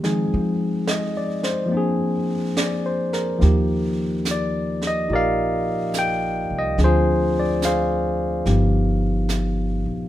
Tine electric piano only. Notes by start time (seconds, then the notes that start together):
0.03 F3 G#3 C4 D#4 G#4
0.89 D#5
1.17 D5
1.44 C5
1.66 F3 A#3
1.72 C4 D4
1.77 G#4
2.57 D5
2.86 C5
3.13 A#4
3.38 F3 A#3 D#4
3.42 G4
4.31 D5
4.87 D#5
5.08 D#4 F4 G4
5.13 A#4 D5 F5
5.99 G5
6.59 D#5
6.78 F3 C4 D4 G#4
6.84 F4 G#4 C5
7.40 D5
7.65 G#4 C5 F5
8.46 F3 B3 D#4 G4